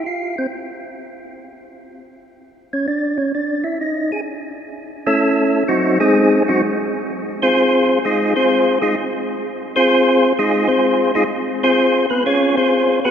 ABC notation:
X:1
M:4/4
L:1/8
Q:"Swing" 1/4=128
K:Db
V:1 name="Tonewheel organ"
F C z6 | z3 D =D _D =D _F | E A z3 [=A,^C=E=A]3 | [G,CEG] [A,CEA]2 [G,CEG] z3 [CFAc]- |
[CFAc]2 [A,EFA] [CFAc]2 [A,EFA] z2 | z [CFAc]3 [A,EFA] [CFAc]2 [A,EFA] | z [CFAc]2 [_C_c] [DFAd] [=CFA=c]2 [_CGA_c] |]